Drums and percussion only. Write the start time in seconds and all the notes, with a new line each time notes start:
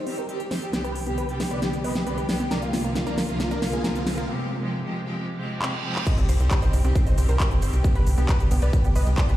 0.07 open hi-hat
0.18 closed hi-hat
0.29 closed hi-hat
0.40 closed hi-hat
0.51 snare, open hi-hat
0.62 closed hi-hat
0.73 snare, closed hi-hat
0.84 closed hi-hat
0.96 open hi-hat
1.07 closed hi-hat
1.18 closed hi-hat
1.29 closed hi-hat
1.40 snare, open hi-hat
1.51 closed hi-hat
1.62 snare, closed hi-hat
1.73 closed hi-hat
1.84 open hi-hat
1.95 snare, closed hi-hat
2.07 closed hi-hat
2.18 closed hi-hat
2.29 snare, open hi-hat
2.40 closed hi-hat
2.51 snare, closed hi-hat
2.62 closed hi-hat
2.73 snare, open hi-hat
2.84 closed hi-hat
2.95 snare, closed hi-hat
3.07 closed hi-hat
3.18 snare, open hi-hat
3.29 closed hi-hat
3.40 snare, closed hi-hat
3.51 closed hi-hat
3.62 snare, open hi-hat
3.73 closed hi-hat
3.84 snare, closed hi-hat
3.95 closed hi-hat
4.07 snare, open hi-hat
4.18 closed hi-hat
5.62 clap
5.96 clap
6.07 kick, closed hi-hat, crash, shaker
6.18 closed hi-hat
6.29 open hi-hat, shaker
6.40 closed hi-hat, shaker
6.51 kick, clap, closed hi-hat, shaker
6.62 closed hi-hat, shaker
6.73 open hi-hat, shaker
6.84 closed hi-hat, shaker
6.95 kick, closed hi-hat, shaker
7.07 closed hi-hat, shaker
7.18 open hi-hat, shaker
7.29 closed hi-hat, shaker
7.40 kick, clap, closed hi-hat, shaker
7.51 closed hi-hat
7.62 open hi-hat, shaker
7.73 closed hi-hat, shaker
7.84 kick, closed hi-hat, shaker
7.95 closed hi-hat
8.07 open hi-hat, shaker
8.18 closed hi-hat, shaker
8.29 kick, clap, closed hi-hat, shaker
8.40 closed hi-hat, shaker
8.51 open hi-hat, shaker
8.62 closed hi-hat, shaker
8.73 kick, closed hi-hat, shaker
8.84 closed hi-hat, shaker
8.96 open hi-hat, shaker
9.07 closed hi-hat, shaker
9.18 kick, clap, closed hi-hat, shaker
9.29 closed hi-hat